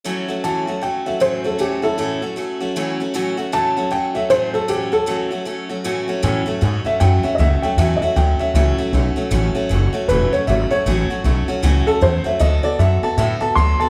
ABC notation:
X:1
M:4/4
L:1/8
Q:"Swing" 1/4=155
K:A
V:1 name="Upright piano"
z2 a2 =g e =c A | =G [EA]4 z3 | z2 a2 =g e =c A | =G A4 z3 |
z3 e =g e [^de] g | e [^de] =g e e4 | z4 B c e c- | c3 z2 A =c e |
^d =d e a e a =c' a |]
V:2 name="Steel-string acoustic guitar"
[A,,E,F,A,CF] [F,A,CF] [A,,E,F,A,CF] [F,A,CF] [F,A,CF] [F,A,CF] [A,,E,F,A,CF] [F,A,CF] | [A,,E,F,A,CF] [F,A,CF] [A,,E,F,A,CF] [F,A,CF] [F,A,CF] [F,A,CF] [A,,E,F,A,CF] [F,A,CF] | [A,,E,F,A,CF] [F,A,CF] [A,,E,F,A,CF] [F,A,CF] [F,A,CF] [F,A,CF] [A,,E,F,A,CF] [F,A,CF] | [A,,E,F,A,CF] [F,A,CF] [A,,E,F,A,CF] [F,A,CF] [F,A,CF] [F,A,CF] [A,,E,F,A,CF] [F,A,CF] |
[A,,E,F,A,CF] [F,A,CF] [F,A,CF] [F,A,CF] [A,,E,F,A,CF] [F,A,CF] [F,A,CF] [F,A,CF] | [A,,E,F,A,CF] [F,A,CF] [F,A,CF] [F,A,CF] [A,,E,F,A,CF] [F,A,CF] [F,A,CF] [F,A,CF] | [A,,E,F,A,CF] [F,A,CF] [F,A,CF] [F,A,CF] [A,,E,F,A,CF] [F,A,CF] [F,A,CF] [F,A,CF] | [A,,E,F,A,CF] [F,A,CF] [F,A,CF] [F,A,CF] [A,,E,F,A,CF] [F,A,CF] [F,A,CF] [F,A,CF] |
[D,F,B,FA] [B,FA] [F,B,FA] [B,FA] [D,F,B,FA] [B,FA] [F,B,FA] [B,FA] |]
V:3 name="Upright bass" clef=bass
z8 | z8 | z8 | z8 |
A,, z G,, z F,, z C,, z | E,, z D,, z C,, z B,,, z | A,,, z F,,, z E,,, z G,,, z | A,,, z B,,, z C,, z E,, z |
D,, z F,, z A,, z D,, z |]